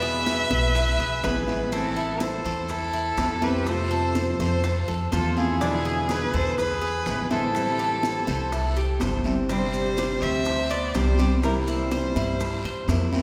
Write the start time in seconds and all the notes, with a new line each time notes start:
Already playing: E2 B2 E3 G#3 B3 E4 B4 E5
0.02 G#4, high bongo, high conga
0.26 high bongo, high conga, short guiro, maracas
0.51 B1 B4, high conga, short guiro, maracas
0.75 E4, muted nylon-string guitar stroke, high bongo, high conga, long guiro, maracas
0.99 B1 G#4, high bongo, high conga
1.23 A1 E3 G#3 B3 E4 G#4 B4, high bongo, low bongo, high conga, short guiro, maracas
1.47 E3 G#3 B3 E4, high bongo, high conga, short guiro, maracas
1.72 E3 A3 C4 E4 A4, high bongo, high conga, long guiro, maracas
1.96 E4, high bongo, high conga
2.20 A4 C5, high bongo, high conga, short guiro, maracas
2.45 E2 A4, high bongo, high conga, short guiro, maracas
2.69 E4 A4, muted nylon-string guitar stroke, high bongo, high conga, long guiro, maracas
2.93 E4, high conga
3.17 F2 E3 A3 C4 E4, high bongo, low bongo, high conga, short guiro, maracas
3.42 A3 C4 E4 G4 B4 C5, high bongo, high conga, short guiro, maracas
3.66 C3 F3 A3 C4 F4 A4 C5, high bongo, high conga, long guiro, maracas
3.91 A4, high bongo, high conga
4.15 high bongo, high conga, short guiro, maracas
4.39 F2 A4 C5, high conga, short guiro, maracas
4.64 F4, muted nylon-string guitar stroke, high bongo, high conga, long guiro, maracas
4.88 F2 A4, high bongo, high conga
5.12 E2 F3 A3 C4 F4 A4 C5, high bongo, low bongo, high conga, short guiro, maracas
5.37 F3 A3 C4 E4 F4 G#4, high bongo, high conga, short guiro, maracas
5.61 B2 D3 G#3 B3 D4 E4, high bongo, high conga, long guiro, maracas
5.85 G#4, high bongo, high conga
6.09 G#4 B4, high bongo, high conga, short guiro, maracas
6.33 E2 A4 B4 C5, high bongo, short guiro, maracas
6.57 G#4 B4, muted nylon-string guitar stroke, high bongo, high conga, long guiro, maracas
6.82 G#4, high conga
7.06 A1 D3 G#3 B3 E4, high bongo, low bongo, high conga, short guiro, maracas
7.30 D3 G#3 B3 E4 A4 C5, high bongo, high conga, short guiro, maracas
7.53 E3 G3 C4 E4, high bongo, long guiro, maracas
7.79 G4, high bongo, high conga
8.03 high bongo, high conga, short guiro, maracas
8.27 C2 C5, high conga, short guiro, maracas
8.52 E4, muted nylon-string guitar stroke, high bongo, high conga, long guiro, maracas
8.76 G4, high bongo, high conga
9.00 G1 E3 G3 C4 E4 C5, high bongo, low bongo, high conga, short guiro, maracas
9.24 G3 C4 E4, high bongo, high conga, short guiro, maracas
9.49 C3 G3 C4 D4 G4 C5, high bongo, high conga, long guiro, maracas
9.73 high bongo, high conga, maracas
9.97 G4, high bongo, high conga, short guiro, maracas
10.21 D2 C4 C5 E5, high bongo, high conga, short guiro, maracas
10.45 muted nylon-string guitar stroke, high bongo, high conga, long guiro, maracas
10.70 B3 C5 D5, high conga, maracas
10.94 C2 G3 C4 D4 G4 C5, high bongo, low bongo, high conga, short guiro, maracas
11.18 G3 C4 D4 G4, high bongo, high conga, short guiro, maracas
11.42 C3 E3 G3 A#3 C4 E4 A#4, high bongo, long guiro, maracas
11.66 G3 E4 C5, high bongo, high conga, maracas
11.91 C5, high bongo, high conga, short guiro, maracas
12.15 G2 E4, high conga, short guiro, maracas
12.39 muted nylon-string guitar stroke, high bongo, high conga, long guiro, maracas
12.64 G2 C5, high bongo, high conga
12.88 F2 E3 A#3 C4 E4, high bongo, low bongo, high conga, short guiro, maracas
13.12 E3 A#3 C4 E4, high bongo, high conga, short guiro, maracas